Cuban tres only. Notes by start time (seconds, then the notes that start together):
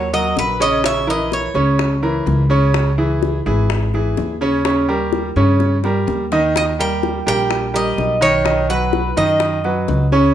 Already playing: C#5
0.14 D#5
0.39 B4
0.62 D#5
0.86 E5
1.10 D#5
1.33 C#5
6.57 D#5
6.80 G5
7.28 G5
7.76 D#5
8.22 C#5
8.70 B4
9.17 D#5